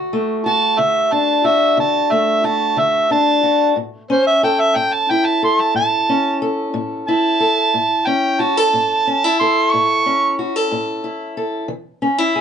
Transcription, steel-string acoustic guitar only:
0.00 0.38 D3 medium
0.00 0.13 A3 medium
0.00 0.45 F#4 medium
0.13 2.11 A3 medium
0.46 1.43 F#4 medium
0.78 1.38 D3 medium
1.12 3.10 D4 medium
1.45 2.43 F#4 medium
1.77 2.37 D3 medium
2.12 4.09 A3 medium
2.44 3.42 F#4 medium
2.76 3.36 D3 medium
3.11 3.73 D4 medium
3.43 3.76 F#4 medium
3.76 4.36 A2 medium
4.10 6.08 C#4 medium
4.43 5.42 A4 medium
4.75 5.35 A2 medium
5.10 7.08 E4 medium
5.43 6.41 A4 medium
5.75 6.34 A2 medium
6.09 7.70 C#4 medium
6.42 7.39 A4 medium
6.74 7.33 A2 medium
7.08 8.43 E4 medium
7.40 7.69 A4 medium
7.74 8.33 A2 medium
8.07 9.06 C#4 medium
8.40 8.57 F#4 medium
8.57 9.39 A4 medium
8.73 9.32 A2 medium
9.07 9.24 C#4 medium
9.24 11.03 E4 soft
9.41 10.38 A4 medium
9.74 10.32 A2 medium
10.06 11.66 C#4 medium
10.39 10.56 F#4 medium
10.56 11.36 A4 medium
10.71 11.30 A2 medium
11.04 11.66 E4 medium
11.37 11.66 A4 medium
11.68 12.28 E3 medium
12.02 12.18 C#4 medium
12.18 12.41 E4 soft
12.36 12.41 G#4 medium

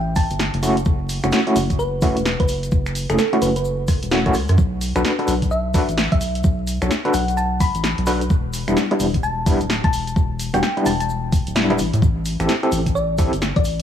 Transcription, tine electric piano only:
0.63 0.76 A3 loud
0.63 0.76 C#4 medium
0.63 0.76 E4 medium
0.63 0.76 F#4 loud
1.24 1.39 A3 medium
1.24 1.39 C#4 medium
1.24 1.39 E4 medium
1.24 1.39 F#4 loud
1.47 1.62 A3 medium
1.47 1.62 C#4 medium
1.47 1.62 E4 medium
1.47 1.62 F#4 loud
2.02 2.15 A3 loud
2.02 2.15 C#4 medium
2.02 2.15 E4 loud
2.02 2.15 F#4 loud
3.10 3.18 A3 medium
3.10 3.18 C#4 medium
3.10 3.18 E4 medium
3.10 3.18 G#4 medium
3.33 3.48 A3 medium
3.33 3.48 C#4 medium
3.33 3.48 E4 medium
3.33 3.48 F#4 loud
4.11 4.24 A3 medium
4.11 4.24 C#4 medium
4.11 4.24 E4 medium
4.11 4.24 F#4 medium
4.26 4.34 A3 loud
4.26 4.34 C#4 medium
4.26 4.34 E4 medium
4.26 4.34 F#4 loud
4.96 5.11 D4 medium
4.96 5.11 F#4 medium
4.96 5.11 A4 medium
4.96 5.11 B4 medium
5.19 5.34 D4 medium
5.19 5.34 F#4 medium
5.19 5.34 A4 medium
5.19 5.34 B4 medium
5.74 5.87 D4 loud
5.74 5.87 F#4 medium
5.74 5.87 A4 medium
5.74 5.87 B4 loud
6.82 6.90 D4 medium
6.82 6.90 F#4 medium
6.82 6.90 A4 medium
6.82 6.90 C#5 medium
7.05 7.20 D4 medium
7.05 7.20 F#4 medium
7.05 7.20 A4 medium
7.05 7.20 B4 loud
8.07 8.20 D4 loud
8.07 8.20 F#4 medium
8.07 8.20 A4 medium
8.07 8.20 B4 loud
8.68 8.83 G3 medium
8.68 8.83 B3 medium
8.68 8.83 D4 medium
8.68 8.83 E4 medium
8.91 9.06 G3 medium
8.91 9.06 B3 medium
8.91 9.06 D4 medium
8.91 9.06 E4 medium
9.46 9.59 G3 loud
9.46 9.59 B3 loud
9.46 9.59 D4 medium
9.46 9.59 E4 loud
10.54 10.62 G3 medium
10.54 10.62 B3 medium
10.54 10.62 D4 medium
10.54 10.62 F#4 medium
10.77 10.92 G3 medium
10.77 10.92 B3 medium
10.77 10.92 D4 medium
10.77 10.92 E4 loud
11.56 11.68 G3 medium
11.56 11.68 B3 medium
11.56 11.68 D4 medium
11.56 11.68 E4 medium
11.70 11.78 G3 loud
11.70 11.78 B3 medium
11.70 11.78 D4 medium
11.70 11.78 E4 loud
12.40 12.55 C4 medium
12.40 12.55 E4 medium
12.40 12.55 G4 medium
12.40 12.55 A4 medium
12.63 12.78 C4 medium
12.63 12.78 E4 medium
12.63 12.78 G4 medium
12.63 12.78 A4 loud
13.18 13.31 C4 loud
13.18 13.31 E4 loud
13.18 13.31 G4 loud
13.18 13.31 A4 loud

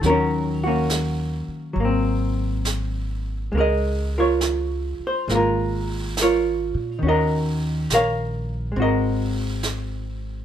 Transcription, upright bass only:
0.03 1.43 D#2 medium
1.48 muted upright bass stroke soft
1.76 3.48 G#1 medium
3.52 4.95 C#2 medium
4.99 muted upright bass stroke soft
5.28 6.69 G#1 medium
6.74 7.01 A#2 medium
7.02 7.85 D#2 medium
7.90 8.72 A#1 medium
8.76 10.45 G#1 medium

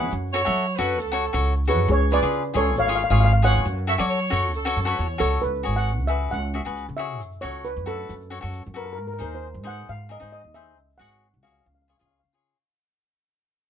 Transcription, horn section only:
0.33 0.74 C#5 loud
0.76 0.99 B4 loud
0.99 1.55 A4 loud
3.89 3.94 E5 loud
3.99 4.04 D5 loud
4.09 4.51 C#5 loud
4.55 4.88 A4 loud
4.88 4.98 B4 medium
4.99 5.43 C#5 medium

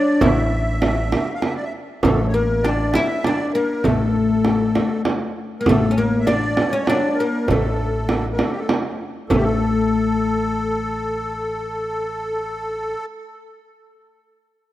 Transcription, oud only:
0.00 0.21 D4 medium
0.22 1.69 E4 medium
2.05 2.34 A3 medium
2.34 2.65 A#3 medium
2.65 2.95 D4 medium
2.95 3.26 E4 loud
3.27 3.57 D4 medium
3.55 3.85 A#3 medium
3.85 5.02 A3 medium
5.61 5.67 A#3 medium
5.69 5.92 A3 medium
5.91 5.98 C#4 medium
5.98 6.29 A#3 medium
6.27 6.70 D4 medium
6.73 6.88 C#4 medium
6.90 7.20 D4 medium
7.20 7.50 A#3 medium
7.51 8.67 A3 medium
9.31 12.93 A3 medium

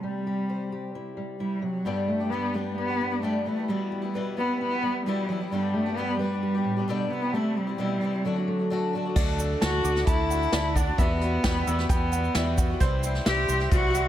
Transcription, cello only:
0.02 0.90 G3 medium
1.40 1.64 G3 medium
1.63 1.87 F#3 medium
1.85 2.10 G3 medium
2.08 2.32 A3 medium
2.30 2.56 B3 medium
2.54 2.77 G3 medium
2.78 3.20 B3 medium
3.23 3.44 A3 medium
3.46 3.70 A3 medium
3.69 4.14 G3 medium
4.38 4.59 B3 medium
4.60 5.03 B3 medium
5.06 5.29 G3 medium
5.28 5.51 F#3 medium
5.51 5.76 G3 medium
5.74 5.98 A3 medium
5.97 6.18 B3 medium
6.19 7.07 G3 medium
7.10 7.35 B3 medium
7.33 7.58 A3 medium
7.56 7.79 G3 medium
7.79 8.26 G3 medium
8.24 8.93 F#3 medium
9.62 10.04 F#4 medium
10.07 10.77 E4 loud
10.76 11.00 D4 medium
10.99 11.89 B3 medium
11.90 12.54 B3 medium
13.26 13.69 G4 loud
13.72 14.08 F#4 loud

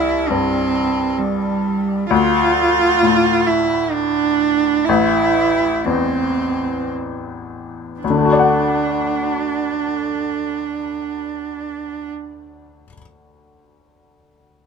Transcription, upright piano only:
0.00 2.07 C2 soft
0.30 2.11 G2 soft
2.10 4.83 D2 soft
3.03 4.88 A2 soft
4.89 7.99 A1 soft
5.86 8.02 E2 soft
8.04 12.83 D2 soft
8.10 12.86 D3 soft
8.18 12.89 A3 soft
8.25 12.93 F#4 soft
8.32 12.97 D5 soft
8.39 13.00 F#5 soft

